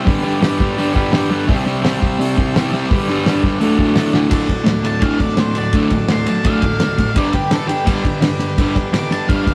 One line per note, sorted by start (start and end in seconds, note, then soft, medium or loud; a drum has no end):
0.04 0.22 G2 medium
0.04 0.23 D3 medium
0.04 0.24 G3 loud
0.04 1.44 G4 medium
0.04 1.45 B4 medium
0.04 1.45 D5 medium
0.04 kick loud
0.04 open hi-hat medium
0.24 0.40 G2 medium
0.24 0.40 D3 medium
0.24 0.41 G3 loud
0.41 0.58 G2 medium
0.41 0.59 D3 loud
0.41 0.60 G3 loud
0.41 snare loud
0.41 open hi-hat medium
0.59 0.76 G2 loud
0.59 0.77 D3 loud
0.59 0.78 G3 loud
0.59 kick medium
0.77 0.93 G2 medium
0.77 0.93 D3 medium
0.77 0.95 G3 loud
0.77 open hi-hat medium
0.94 1.10 G2 medium
0.94 1.10 D3 loud
0.94 1.12 G3 loud
0.94 1.12 B5 medium
0.94 kick loud
1.11 1.29 G2 medium
1.11 1.29 D3 medium
1.11 1.31 G3 loud
1.11 1.30 G5 medium
1.11 snare loud
1.11 open hi-hat medium
1.30 1.46 G2 loud
1.30 1.47 D3 loud
1.30 1.49 G3 loud
1.30 1.47 F#5 medium
1.47 1.64 C3 loud
1.47 1.64 G3 loud
1.47 1.65 C4 loud
1.47 2.86 G4 medium
1.47 kick loud
1.47 open hi-hat medium
1.51 2.88 C5 medium
1.51 2.88 E5 medium
1.65 1.81 C3 medium
1.65 1.82 G3 loud
1.65 1.83 C4 medium
1.82 1.99 C3 medium
1.82 2.00 G3 loud
1.82 2.00 C4 loud
1.82 snare loud
1.82 open hi-hat medium
2.00 2.17 C3 loud
2.00 2.18 G3 loud
2.00 2.19 C4 loud
2.00 kick medium
2.18 2.35 C3 medium
2.18 2.35 G3 loud
2.18 2.36 C4 loud
2.18 open hi-hat medium
2.36 2.54 C3 loud
2.36 2.53 G3 loud
2.36 2.55 C4 loud
2.36 kick medium
2.55 2.71 C3 medium
2.55 2.72 G3 medium
2.55 2.72 C4 loud
2.55 snare loud
2.55 open hi-hat medium
2.72 2.89 C3 medium
2.72 2.89 G3 loud
2.72 2.89 C4 loud
2.88 3.07 G2 loud
2.88 3.07 D3 loud
2.88 3.08 G3 medium
2.88 3.58 G4 medium
2.88 3.59 B4 medium
2.88 kick loud
2.88 open hi-hat medium
2.92 3.60 D5 medium
3.08 3.25 G2 medium
3.08 3.26 D3 loud
3.08 3.26 G3 loud
3.26 3.43 G2 medium
3.26 3.44 D3 medium
3.26 3.45 G3 loud
3.26 snare loud
3.26 open hi-hat medium
3.44 3.59 G2 loud
3.44 3.60 D3 loud
3.44 3.61 G3 loud
3.44 kick medium
3.58 3.77 D2 loud
3.58 3.78 A2 loud
3.58 3.78 D3 loud
3.58 4.29 F#4 medium
3.58 4.29 A4 medium
3.58 4.31 D5 medium
3.58 open hi-hat medium
3.78 3.93 D2 medium
3.78 3.94 A2 loud
3.78 3.94 D3 loud
3.78 kick medium
3.94 4.11 D2 medium
3.94 4.12 A2 medium
3.94 4.12 D3 loud
3.94 snare loud
3.94 open hi-hat medium
4.12 4.28 D2 medium
4.12 4.28 A2 loud
4.12 4.28 D3 loud
4.12 snare medium
4.29 4.46 D2 medium
4.29 4.46 A2 medium
4.29 4.47 D3 medium
4.29 7.11 F#4 medium
4.29 7.11 A4 medium
4.29 7.12 D5 medium
4.29 kick loud
4.29 ride loud
4.47 4.62 D2 medium
4.47 4.63 A2 medium
4.47 kick medium
4.47 ride medium
4.64 4.81 D2 medium
4.64 4.81 A2 medium
4.64 snare loud
4.64 ride medium
4.83 4.98 D2 medium
4.83 4.99 A2 medium
4.83 5.02 A5 medium
4.83 ride medium
4.99 5.17 D2 medium
4.99 5.18 A2 medium
4.99 5.18 D3 medium
4.99 5.20 F5 medium
4.99 kick loud
4.99 ride medium
5.20 5.36 D2 medium
5.20 5.36 A2 medium
5.20 5.40 D5 medium
5.20 kick medium
5.20 ride medium
5.29 snare soft
5.37 5.54 D2 medium
5.37 5.54 A2 medium
5.37 5.58 C5 medium
5.37 snare loud
5.37 ride medium
5.55 5.72 D2 medium
5.55 5.72 A2 medium
5.55 5.74 D5 medium
5.55 ride medium
5.73 5.90 D2 medium
5.73 5.90 A2 medium
5.73 5.90 D3 loud
5.73 kick loud
5.73 ride medium
5.90 6.07 D2 medium
5.90 6.07 A2 medium
5.90 kick medium
5.90 snare soft
5.90 ride medium
6.08 6.25 D2 medium
6.08 6.25 A2 medium
6.08 6.27 C6 medium
6.08 snare loud
6.08 ride medium
6.26 6.42 D2 medium
6.26 6.42 A2 medium
6.26 6.45 A5 medium
6.26 ride medium
6.43 6.60 D2 loud
6.43 6.61 A2 medium
6.43 6.61 D3 medium
6.43 7.14 F5 loud
6.43 kick loud
6.43 ride loud
6.62 6.78 D2 medium
6.62 6.79 A2 medium
6.62 kick medium
6.62 ride medium
6.72 snare soft
6.80 6.96 D2 medium
6.80 6.96 A2 medium
6.80 snare loud
6.80 ride loud
6.98 7.14 D2 medium
6.98 7.13 A2 medium
6.98 kick medium
6.98 ride medium
7.14 7.31 G2 loud
7.14 7.32 D3 medium
7.14 7.32 G3 medium
7.14 9.54 G4 medium
7.14 9.54 B4 medium
7.14 9.54 D5 medium
7.14 7.34 D5 medium
7.14 kick loud
7.14 ride loud
7.33 7.49 G2 medium
7.33 7.49 D3 medium
7.33 7.51 G4 medium
7.33 kick medium
7.33 snare soft
7.33 ride medium
7.51 7.66 G2 medium
7.51 7.67 D3 medium
7.51 7.68 A4 medium
7.51 snare loud
7.51 ride loud
7.67 7.84 G2 medium
7.67 7.84 D3 medium
7.67 7.85 G4 loud
7.67 ride medium
7.85 8.02 G2 loud
7.85 8.03 D3 medium
7.85 8.03 G3 loud
7.85 kick loud
7.85 ride loud
8.04 8.20 G2 medium
8.04 8.20 D3 medium
8.04 kick medium
8.04 ride medium
8.21 8.38 G2 medium
8.21 8.37 D3 medium
8.21 snare loud
8.21 ride loud
8.39 8.55 G2 medium
8.39 8.55 D3 medium
8.39 ride medium
8.58 8.73 G2 medium
8.58 8.74 D3 medium
8.58 8.75 G3 loud
8.58 kick loud
8.58 ride loud
8.75 8.90 G2 medium
8.75 8.91 D3 medium
8.75 kick medium
8.75 snare soft
8.75 ride medium
8.93 9.08 G2 medium
8.93 9.08 D3 medium
8.93 9.10 D6 medium
8.93 snare loud
8.93 ride medium
9.10 9.26 G2 medium
9.10 9.26 D3 medium
9.10 9.28 A5 medium
9.10 ride medium
9.28 9.44 G2 medium
9.28 9.44 D3 medium
9.28 9.45 G3 loud
9.28 9.54 F5 loud
9.28 kick loud
9.28 ride loud
9.45 9.54 G2 medium
9.45 9.54 D3 medium
9.45 kick medium
9.45 ride medium